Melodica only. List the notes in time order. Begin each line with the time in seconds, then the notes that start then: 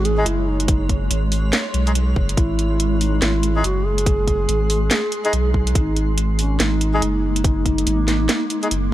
0.18 G#3 D#4 G#4
1.87 G#3 D#4 G#4
3.56 G#3 D#4 G#4
5.25 G#3 D#4 G#4
6.94 G#3 D#4 G#4
8.63 G#3 D#4 G#4